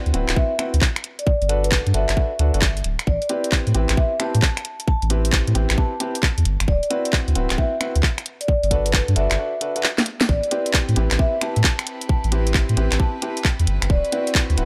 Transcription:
Already playing: grand piano C4 E4 F#4 B4
0.06 sub bass D2, closed hi-hat
0.14 sub bass D1, grand piano C4 E4 F#4 B4, closed hi-hat
0.29 sub bass D1, finger snap, clap, closed hi-hat
0.36 grand piano C4 E4 F#4 B4, vibraphone E5, kick
0.59 grand piano C4 E4 F#4 B4, finger snap, closed hi-hat
0.74 sub bass D2, closed hi-hat
0.81 kick, clap
0.96 finger snap, closed hi-hat
1.04 closed hi-hat
1.19 vibraphone D5, closed hi-hat
1.27 kick
1.42 sub bass G1, closed hi-hat
1.49 grand piano D4 F#4 A4 B4, closed hi-hat
1.64 vibraphone B4, closed hi-hat
1.72 kick, clap
1.87 sub bass G2, closed hi-hat
1.94 sub bass G1, grand piano D4 F#4 A4 B4, vibraphone E5, closed hi-hat
2.09 sub bass G1, finger snap, clap, closed hi-hat
2.17 grand piano D4 F#4 A4 B4, kick
2.39 sub bass D2, grand piano D4 F#4 A4 B4, closed hi-hat
2.54 sub bass G1, grand piano D4 F#4 A4 B4, closed hi-hat
2.62 kick, clap
2.77 closed hi-hat
2.84 sub bass D1, closed hi-hat
2.99 finger snap, closed hi-hat
3.07 sub bass A1, vibraphone D5, kick
3.22 closed hi-hat
3.29 grand piano C4 E4 G4 B4, closed hi-hat
3.44 closed hi-hat
3.52 kick, clap
3.67 sub bass A2, closed hi-hat
3.74 sub bass A1, grand piano C4 E4 G4 B4, closed hi-hat
3.89 sub bass A1, finger snap, clap, closed hi-hat
3.97 grand piano C4 E4 G4 B4, vibraphone E5, kick
4.20 grand piano C4 E4 G4 B4, vibraphone A5, finger snap, closed hi-hat
4.35 sub bass A2, closed hi-hat
4.42 kick, clap
4.57 finger snap, closed hi-hat
4.65 closed hi-hat
4.80 closed hi-hat
4.88 vibraphone A5, kick
5.02 sub bass A1, closed hi-hat
5.10 grand piano C4 E4 G4 B4, closed hi-hat
5.25 closed hi-hat
5.33 kick, clap
5.47 sub bass A2, closed hi-hat
5.55 sub bass A1, grand piano C4 E4 G4 B4, closed hi-hat
5.70 sub bass A1, finger snap, clap, closed hi-hat
5.77 grand piano C4 E4 G4 B4, vibraphone A5, kick
6.00 grand piano C4 E4 G4 B4, closed hi-hat
6.15 closed hi-hat
6.23 kick, clap
6.38 sub bass E2, closed hi-hat
6.45 sub bass G1, closed hi-hat
6.60 sub bass G1, finger snap, closed hi-hat
6.68 sub bass D1, vibraphone D5, kick
6.83 closed hi-hat
6.90 grand piano C4 E4 F#4 B4, closed hi-hat
7.05 closed hi-hat
7.13 kick, clap
7.28 sub bass D2, closed hi-hat
7.35 sub bass D1, grand piano C4 E4 F#4 B4, closed hi-hat
7.50 sub bass D1, finger snap, clap, closed hi-hat
7.58 grand piano C4 E4 F#4 B4, vibraphone E5, kick
7.80 grand piano C4 E4 F#4 B4, finger snap, closed hi-hat
7.96 sub bass D2, closed hi-hat
8.03 kick, clap
8.18 finger snap, closed hi-hat
8.26 closed hi-hat
8.41 vibraphone D5, closed hi-hat
8.48 kick
8.63 sub bass G1, closed hi-hat
8.71 grand piano D4 F#4 A4 B4, kick, closed hi-hat
8.86 vibraphone B4, closed hi-hat
8.94 kick, clap
9.08 sub bass G2, closed hi-hat
9.16 sub bass G1, grand piano D4 F#4 A4 B4, vibraphone E5, closed hi-hat
9.31 sub bass G1, finger snap, clap, closed hi-hat
9.38 grand piano D4 F#4 A4 B4
9.61 grand piano D4 F#4 A4 B4, closed hi-hat
9.76 grand piano D4 F#4 A4 B4, closed hi-hat
9.83 clap
9.98 snare, closed hi-hat
10.06 closed hi-hat
10.21 snare, closed hi-hat
10.28 sub bass A1, violin section C4 E4 G4 B4, vibraphone D5, kick
10.43 closed hi-hat
10.51 grand piano C4 E4 G4 B4, closed hi-hat
10.66 closed hi-hat
10.74 kick, clap
10.89 sub bass A2, closed hi-hat
10.96 sub bass A1, grand piano C4 E4 G4 B4, closed hi-hat
11.11 sub bass A1, finger snap, clap, closed hi-hat
11.19 grand piano C4 E4 G4 B4, vibraphone E5, kick
11.41 grand piano C4 E4 G4 B4, vibraphone A5, finger snap, closed hi-hat
11.56 sub bass A2, closed hi-hat
11.64 kick, clap
11.79 finger snap, closed hi-hat
11.87 closed hi-hat
12.01 closed hi-hat
12.09 vibraphone A5, kick
12.24 sub bass A1, closed hi-hat
12.32 grand piano C4 E4 G4 B4, closed hi-hat
12.47 closed hi-hat
12.54 kick, clap
12.69 sub bass A2, closed hi-hat
12.77 sub bass A1, grand piano C4 E4 G4 B4, closed hi-hat
12.92 sub bass A1, finger snap, clap, closed hi-hat
13.00 grand piano C4 E4 G4 B4, vibraphone A5, kick
13.22 grand piano C4 E4 G4 B4, closed hi-hat
13.37 closed hi-hat
13.45 kick, clap
13.59 sub bass E2, closed hi-hat
13.67 sub bass G1, closed hi-hat
13.82 sub bass G1, finger snap, closed hi-hat
13.90 sub bass D1, violin section F#4, vibraphone D5, kick
14.05 closed hi-hat
14.12 grand piano C4 E4 F#4 B4, closed hi-hat
14.27 closed hi-hat
14.35 kick, clap
14.50 sub bass D2, closed hi-hat
14.57 sub bass D1, grand piano C4 E4 F#4 B4, closed hi-hat

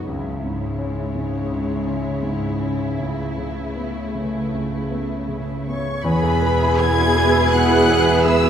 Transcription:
Already playing: grand piano B1 F#2 D#4
0.08 grand piano C#2, cello section C#3, viola section G#3, violin section E4 C#5
0.43 grand piano G#2
0.79 grand piano C#4
1.15 grand piano G#2
1.51 grand piano C#2
1.87 grand piano C#4
2.23 grand piano G#2
2.60 grand piano C#4
2.97 grand piano C#2, viola section A3, violin section B4
3.38 grand piano C#3
3.77 grand piano B3
4.15 grand piano C#3
4.53 grand piano C#2
4.91 grand piano B3
5.28 grand piano C#3
5.67 grand piano B3, flute C#5, violin section C#6
6.03 double bass section E1, cello section E2, grand piano E2, viola section B3 E4, french horn section B3 G#4, violin section G#4 B4 B5, flute B4, cor anglais G#5
6.23 grand piano G#4
6.42 grand piano B4
6.61 grand piano E4
6.79 grand piano G#4, cor anglais B4, flute G#5, violin section G#6
6.98 grand piano F#4
7.16 grand piano G#4
7.34 grand piano E4
7.52 grand piano B2, flute F#5, cor anglais G#5, violin section F#6
7.70 grand piano G#4
7.89 grand piano B4
8.07 grand piano E4
8.24 grand piano G#4, cor anglais B4, flute E5, violin section E6
8.42 grand piano F#4

